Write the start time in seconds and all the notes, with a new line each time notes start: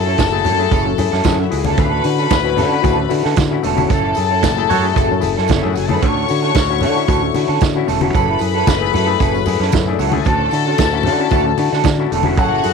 Already playing: F#2 F#3 C#4 E4 F#4 A4 A5
0.06 C#4 E4 A4
0.18 F#1, muted clean electric guitar stroke, kick, snare, closed hi-hat, tambourine, high conga
0.31 A3 E4 G#4, muted clean electric guitar stroke
0.44 F#2 F#3 C#4 E4 A4, open hi-hat, tambourine, low conga
0.58 A3 E4 G#4, muted clean electric guitar stroke, tambourine
0.71 F#1 C#4 E4 G#4 A4, kick, closed hi-hat, tambourine, muted conga
0.85 F#3, muted clean electric guitar stroke
0.98 F#2 E4 G#4, muted clean electric guitar stroke, open hi-hat, tambourine, muted conga, low conga
1.12 F#2 C#4 E4 A4, snare
1.24 F#2 C#4 E4 G#4 A4, kick, snare, closed hi-hat, tambourine, high conga
1.39 F#3 E4 E5, muted clean electric guitar stroke
1.51 C#2 E4 F#4 G#4 F#5, muted clean electric guitar stroke, open hi-hat, tambourine
1.60 G#4 G#5
1.64 C#4 E4 A4, tambourine, high conga
1.70 A4 A5
1.77 D2 D3 A3 C#4 E4 F#4 A4 B4 B5, kick, closed hi-hat, tambourine
2.04 D3 E4 F#4, muted clean electric guitar stroke, open hi-hat, tambourine
2.18 C#4 F#4 A4, tambourine
2.30 D2, muted clean electric guitar stroke, kick, snare, closed hi-hat, tambourine, high conga
2.43 C#4 E4 F#4, muted clean electric guitar stroke
2.56 D3 A3 C#4 F#4 A4, open hi-hat, tambourine, low conga
2.70 C#4 E4 F#4, muted clean electric guitar stroke
2.82 D2 C#4 E4 F#4 A4, kick, closed hi-hat, tambourine, muted conga
2.97 D3 A3, muted clean electric guitar stroke
3.09 D3 E4 F#4, muted clean electric guitar stroke, open hi-hat, tambourine, muted conga
3.23 D3 C#4 F#4 A4, snare
3.36 D3, muted clean electric guitar stroke, kick, snare, closed hi-hat, tambourine, high conga
3.51 C#4 E4 F#4, muted clean electric guitar stroke
3.63 E1 D3 A3 C#4 F#4 A4, open hi-hat, tambourine
3.75 C#4 E4 F#4 A4, tambourine, high conga
3.88 F#1 F#3 C#4 E4 F#4 A4 A5, kick, closed hi-hat, tambourine
4.15 F#2 E4 G#4, muted clean electric guitar stroke, open hi-hat, tambourine
4.30 C#4 E4 A4
4.42 F#1, muted clean electric guitar stroke, kick, snare, closed hi-hat, tambourine, high conga
4.56 A3 E4 G#4, muted clean electric guitar stroke
4.69 F#2 F#3 C#4 E4 F#4 A4 C#5, open hi-hat, tambourine, low conga
4.82 A3 E4 G#4, muted clean electric guitar stroke
4.94 F#1 C#4 E4 G#4 A4, kick, closed hi-hat, tambourine, muted conga
5.09 F#2 F#3, muted clean electric guitar stroke
5.20 F#1 E4 G#4, muted clean electric guitar stroke, open hi-hat, tambourine, muted conga, low conga
5.38 F#2 C#4 E4 A4, snare
5.48 F#1 C#4 D4 E4 A4 D5, kick, snare, closed hi-hat, tambourine, high conga
5.58 A3 E4 E5
5.62 F#2 E4 G#4, muted clean electric guitar stroke
5.67 F#4 F#5
5.75 F#1 F#3 G#4 G#5, muted clean electric guitar stroke, open hi-hat, tambourine
5.85 A3 E4 G#4 A4 A5
5.89 F#2 C#4 E4 A4, high conga
5.94 B4 B5
6.02 D2 D3 A3 C#4 E4 F#4 A4 C#5 C#6, kick, closed hi-hat, tambourine, muted conga
6.28 D3 E4 F#4, muted clean electric guitar stroke, open hi-hat, tambourine
6.42 C#4 F#4 A4, tambourine
6.54 D2, muted clean electric guitar stroke, kick, snare, closed hi-hat, tambourine, high conga
6.69 C#4 E4 F#4, muted clean electric guitar stroke
6.81 D3 A3 C#4 F#4 A4, open hi-hat, tambourine, low conga
6.95 C#4 E4 F#4, muted clean electric guitar stroke, tambourine
7.07 D2 C#4 E4 F#4 A4, kick, closed hi-hat, tambourine, muted conga
7.22 D3 A3, muted clean electric guitar stroke
7.33 D3 E4 F#4, muted clean electric guitar stroke, open hi-hat, tambourine, muted conga
7.48 D3 C#4 F#4 A4
7.59 D3, muted clean electric guitar stroke, kick, snare, closed hi-hat, tambourine, high conga
7.74 C#4 E4 F#4, muted clean electric guitar stroke
7.87 E1 D3 A3 C#4 F#4 A4, open hi-hat, tambourine
8.01 C#4 E4 F#4 A4, high conga
8.13 F#1 F#3 C#4 E4 G#4 A4 B4 B5, kick, closed hi-hat, tambourine, muted conga
8.39 F#2 E4 G#4, muted clean electric guitar stroke, open hi-hat, tambourine
8.54 C#4 E4 A4
8.66 F#1, muted clean electric guitar stroke, kick, snare, closed hi-hat, tambourine, high conga
8.80 A3 E4 G#4, muted clean electric guitar stroke
8.91 F#2 F#3 C#4 E4 A4, open hi-hat, tambourine, low conga
9.06 A3 E4 G#4, muted clean electric guitar stroke
9.19 F#1 C#4 E4 G#4 A4, kick, closed hi-hat, tambourine, muted conga
9.34 F#3, muted clean electric guitar stroke, tambourine
9.46 F#2 E4 G#4, muted clean electric guitar stroke, open hi-hat, tambourine, muted conga, low conga
9.60 F#2 C#4 E4 A4, snare
9.72 F#2, kick, snare, closed hi-hat, tambourine, high conga
9.86 A3 E4 G#4, muted clean electric guitar stroke
9.91 D4 D5
9.99 C#2 F#3 C#4 E4 A4 E5, open hi-hat, tambourine
10.08 F#4 F#5, high conga
10.12 A3 E4 G#4, muted clean electric guitar stroke
10.16 G#4 G#5
10.25 D2 D3 A3 C#4 F#4 A4 A5, kick, closed hi-hat, tambourine
10.51 D3 E4 F#4, muted clean electric guitar stroke, open hi-hat, tambourine
10.66 C#4 F#4 A4
10.78 D2, kick, snare, closed hi-hat, tambourine, high conga
10.92 C#4 E4 F#4, muted clean electric guitar stroke
11.03 D3 A3 C#4 F#4, open hi-hat, tambourine, low conga
11.07 A4
11.19 C#4 E4 F#4, muted clean electric guitar stroke
11.31 D2 C#4 E4 F#4 A4, kick, closed hi-hat, tambourine, muted conga
11.45 D3 A3, muted clean electric guitar stroke
11.58 D3 E4 F#4, muted clean electric guitar stroke, open hi-hat, tambourine, muted conga
11.73 D3 C#4 F#4 A4, snare
11.83 D3, muted clean electric guitar stroke, kick, snare, closed hi-hat, tambourine, high conga
11.99 C#4 E4 F#4, muted clean electric guitar stroke
12.11 E1 D3 A3 C#4 F#4 A4, open hi-hat, tambourine
12.23 C#4 E4 F#4, high conga
12.27 C#4 F#4 A4
12.36 F#1 F#3 C#4 E4 F#4 G#4 A4 F#5, kick, closed hi-hat, tambourine, muted conga
12.63 F#2 E4 G#4, muted clean electric guitar stroke, open hi-hat, tambourine